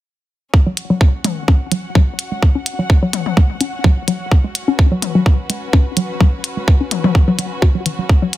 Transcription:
0.54 8.37 C#4 medium
0.54 kick loud
0.63 0.70 F#3 loud
0.63 8.37 F#4 medium
0.77 closed hi-hat medium
0.90 0.93 F#3 loud
0.95 4.76 F#5 medium
1.01 kick loud
1.24 1.28 G#3 medium
1.24 closed hi-hat medium
1.24 high tom medium
1.48 1.52 C#4 medium
1.48 kick loud
1.72 1.76 F#3 medium
1.72 closed hi-hat medium
1.95 1.99 F#3 loud
1.95 kick loud
2.19 closed hi-hat medium
2.32 2.35 G#3 medium
2.42 kick loud
2.55 2.59 C#4 medium
2.66 closed hi-hat medium
2.79 2.82 F#3 loud
2.90 kick loud
3.03 3.06 F#3 loud
3.13 closed hi-hat medium
3.13 high tom medium
3.26 high tom medium
3.37 3.41 G#3 medium
3.37 kick loud
3.61 3.65 C#4 medium
3.61 closed hi-hat medium
3.84 3.88 F#3 loud
3.84 kick loud
4.08 4.12 F#3 loud
4.08 closed hi-hat medium
4.31 kick loud
4.44 4.48 G#3 medium
4.55 closed hi-hat loud
4.68 4.71 C#4 medium
4.73 8.37 B4 medium
4.79 kick loud
4.92 4.95 F#3 loud
5.02 closed hi-hat medium
5.02 high tom medium
5.15 5.18 F#3 loud
5.26 kick loud
5.50 5.54 G#3 medium
5.50 closed hi-hat medium
5.73 5.77 C#4 medium
5.73 kick loud
5.97 6.01 F#3 loud
5.97 closed hi-hat medium
6.20 6.24 F#3 loud
6.20 kick loud
6.44 closed hi-hat medium
6.57 6.60 G#3 medium
6.68 kick loud
6.81 6.84 C#4 medium
6.91 closed hi-hat medium
6.91 high tom medium
7.04 7.07 F#3 loud
7.04 high tom medium
7.15 kick loud
7.28 7.31 F#3 loud
7.39 7.43 F#3 medium
7.39 closed hi-hat medium
7.62 7.66 F#4 loud
7.62 kick loud
7.75 7.78 F#3 medium
7.86 7.90 E3 medium
7.86 closed hi-hat medium
7.99 8.02 F#3 medium
8.09 kick loud
8.22 8.26 F#3 loud
8.33 closed hi-hat medium

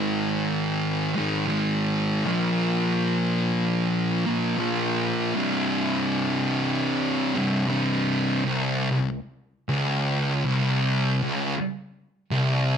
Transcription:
0.00 1.13 G#2 loud
0.00 1.14 D#3 loud
0.00 1.14 G#3 medium
1.16 1.46 G#2 medium
1.16 1.46 D#3 medium
1.16 1.45 G#3 medium
1.47 2.23 G#2 medium
1.47 2.24 D#3 medium
1.47 2.24 G#3 medium
2.24 4.23 A#2 medium
2.24 4.24 F3 medium
2.24 4.25 A#3 medium
4.26 4.55 A#2 medium
4.26 4.57 F3 medium
4.26 4.55 A#3 loud
4.57 5.33 A#2 medium
4.57 5.34 F3 medium
4.57 5.35 A#3 medium
5.35 7.34 C2 medium
5.35 7.34 G2 loud
5.35 7.34 C3 loud
7.35 7.66 C2 medium
7.35 7.66 G2 medium
7.35 7.65 C3 medium
7.67 8.43 C2 medium
7.67 8.44 G2 medium
7.67 8.44 C3 medium
8.44 8.90 C2 loud
8.91 9.16 C2 medium
9.69 10.45 C#2 loud
10.45 11.22 C2 loud
11.23 11.53 C#2 loud
12.31 12.78 C2 loud

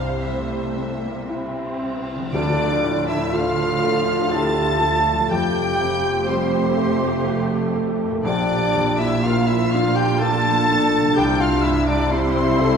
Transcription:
0.00 2.09 C2 medium
0.00 2.30 C2 medium
0.00 0.56 G2 soft
0.00 2.09 C3 medium
0.00 1.96 G3 medium
0.00 0.76 C4 medium
0.00 1.96 C4 medium
0.00 1.78 C5 medium
0.00 0.20 F5 loud
0.22 1.09 G3 soft
0.22 0.99 A3 medium
0.22 1.82 E5 medium
0.76 1.61 C4 soft
1.03 1.29 A#3 medium
1.29 2.33 C4 medium
1.29 2.13 E4 soft
1.82 2.34 C4 soft
2.15 5.27 D3 medium
2.20 5.12 F3 soft
2.24 5.20 A3 soft
2.29 5.27 D2 medium
2.29 3.79 D3 loud
2.29 5.27 F3 medium
2.29 5.25 F4 soft
2.29 5.27 F4 medium
2.29 3.10 D5 medium
2.29 3.05 D6 loud
2.33 5.28 D2 medium
2.33 5.28 D3 medium
2.33 3.09 D4 medium
2.33 3.30 F4 medium
2.33 3.05 D5 medium
2.33 tam-tam medium
2.84 3.64 A2 medium
3.07 3.33 E4 medium
3.07 3.35 E5 medium
3.07 3.34 E5 medium
3.07 3.34 E6 medium
3.31 4.13 F3 medium
3.31 4.31 F4 medium
3.31 4.32 A4 medium
3.31 4.32 F5 medium
3.31 4.33 F6 loud
3.83 4.62 A3 medium
4.30 5.12 E4 medium
4.30 4.83 G4 medium
4.30 5.30 A4 medium
4.30 5.30 A5 loud
4.30 5.32 A5 medium
4.30 5.32 A6 loud
4.81 5.31 A3 medium
4.81 7.27 F4 medium
5.13 9.03 F3 medium
5.17 8.23 G3 medium
5.22 8.25 A3 medium
5.27 8.21 F2 medium
5.27 8.20 F4 soft
5.27 6.27 G5 medium
5.31 8.26 F1 medium
5.31 8.26 F2 medium
5.31 8.22 A3 medium
5.31 6.29 G4 loud
5.31 8.22 G4 medium
5.31 6.28 G5 loud
5.31 6.28 G6 loud
5.80 6.59 C3 medium
6.27 7.07 G3 medium
6.27 7.75 C4 medium
6.27 7.76 C5 medium
6.27 7.74 C5 medium
6.27 7.76 C6 medium
6.77 7.56 A3 medium
7.26 8.05 F4 medium
7.26 8.24 A4 medium
7.76 8.25 A3 medium
8.08 11.14 A#2 medium
8.12 11.16 A#3 medium
8.17 11.18 D4 medium
8.21 11.14 A#1 medium
8.21 11.15 A#1 medium
8.21 11.14 A#3 medium
8.21 9.01 D4 medium
8.21 11.20 F4 medium
8.21 11.14 F4 medium
8.21 9.01 D5 medium
8.21 8.96 D5 loud
8.25 11.15 A#2 medium
8.25 9.25 G4 medium
8.25 8.96 D6 loud
8.75 9.54 F2 medium
8.99 9.25 E4 medium
8.99 9.24 E5 medium
8.99 9.24 E6 loud
9.23 10.03 A#3 medium
9.23 9.49 F4 medium
9.23 10.22 F4 medium
9.23 9.48 F5 medium
9.23 9.49 F5 medium
9.23 9.49 F6 loud
9.47 9.73 E4 medium
9.47 9.73 E5 medium
9.47 9.73 E6 loud
9.70 10.51 D4 medium
9.70 9.97 F4 medium
9.70 9.97 F5 medium
9.70 9.98 F5 medium
9.70 9.96 F6 loud
9.94 10.21 G4 medium
9.94 10.20 G5 loud
9.94 10.22 G5 medium
9.94 10.20 G6 loud
10.19 11.94 D4 medium
10.19 10.99 F4 medium
10.19 11.18 A4 loud
10.19 11.15 A5 loud
10.19 11.19 A5 loud
10.19 11.17 A6 loud
10.70 11.19 D4 medium
11.01 12.77 C3 medium
11.05 12.77 G3 medium
11.09 12.77 G4 medium
11.16 12.77 C2 medium
11.16 12.77 C3 medium
11.16 12.77 G3 medium
11.16 12.77 E4 medium
11.16 11.42 G4 medium
11.16 11.42 G5 medium
11.16 11.43 G5 medium
11.16 11.41 G6 loud
11.40 11.67 F4 medium
11.40 11.65 F5 loud
11.40 11.66 F5 medium
11.40 11.66 F6 loud
11.63 12.42 G2 medium
11.63 11.87 E4 medium
11.63 11.89 E5 medium
11.63 11.90 E5 medium
11.63 11.88 E6 loud
11.86 12.13 D4 medium
11.86 12.14 D5 medium
11.86 12.13 D5 loud
11.86 12.12 D6 loud
12.10 12.77 G3 medium
12.10 12.77 C4 medium
12.10 12.60 E4 medium
12.10 12.77 C5 loud
12.10 12.77 C6 loud
12.59 12.77 E4 medium
12.59 12.77 A4 loud

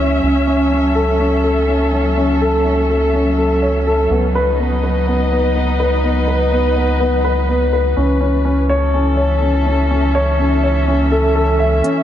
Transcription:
0.00 0.20 C#2 medium
0.00 0.23 E3 medium
0.00 0.23 C#4 medium
0.00 5.04 C#4 medium
0.00 0.23 G#4 medium
0.00 0.25 C#5 medium
0.00 4.09 E5 medium
0.23 4.07 C#2 medium
0.23 7.97 F#3 medium
0.23 0.45 C#4 medium
0.47 0.61 C#4 medium
0.54 5.16 A4 medium
0.71 0.85 C#4 medium
0.95 1.18 A4 medium
1.19 1.42 C#4 medium
1.44 1.67 A4 medium
1.68 1.91 C#4 medium
1.92 2.06 C#4 medium
2.17 2.30 C#4 medium
2.41 2.64 A4 medium
2.65 2.88 C#4 medium
2.90 3.12 A4 medium
3.14 3.36 C#4 medium
3.38 3.61 A4 medium
3.62 3.76 C#5 medium
3.87 4.09 A4 medium
4.10 7.95 C#2 medium
4.10 4.24 B3 medium
4.20 7.97 D#4 medium
4.29 8.65 B4 medium
4.35 4.58 B4 medium
4.42 7.97 D#5 medium
4.59 4.82 B3 medium
4.83 5.06 B4 medium
5.07 5.30 B3 medium
5.31 5.45 B3 medium
5.55 5.69 B3 medium
5.80 6.02 B4 medium
6.04 6.27 B3 medium
6.28 6.51 B4 medium
6.52 6.75 B3 medium
6.76 6.90 B3 medium
7.00 7.14 B3 medium
7.24 7.47 B4 medium
7.49 7.72 B3 medium
7.73 7.96 B4 medium
7.96 11.82 C#2 medium
7.96 12.03 E3 medium
7.96 8.19 C#4 medium
8.21 8.35 C#4 medium
8.35 12.03 C#4 medium
8.45 8.59 C#4 medium
8.69 8.92 C#5 medium
8.75 11.84 A4 medium
8.94 9.17 C#4 medium
9.16 9.40 C#5 medium
9.16 12.03 E5 medium
9.42 9.65 C#4 medium
9.66 9.80 C#4 medium
9.91 10.04 C#4 medium
10.15 10.38 C#5 medium
10.39 10.62 C#4 medium
10.63 10.86 C#5 medium
10.87 11.10 C#4 medium
11.12 11.34 A4 medium
11.35 11.58 A4 medium
11.59 11.82 E5 medium
11.84 11.98 C#4 medium
11.84 closed hi-hat soft

